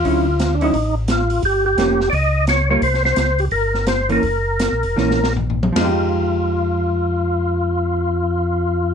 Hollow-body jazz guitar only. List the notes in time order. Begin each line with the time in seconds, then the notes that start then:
0.04 D3 F#3 C#4 E4
0.61 D3 F#3 C#4 E4
1.78 F3 A#3 C#4
2.70 G3 A#3 F4
4.09 E3 A#3 C#4
4.96 E3 A#3 C#4
5.73 F3
5.77 G#3 D#4
5.84 G4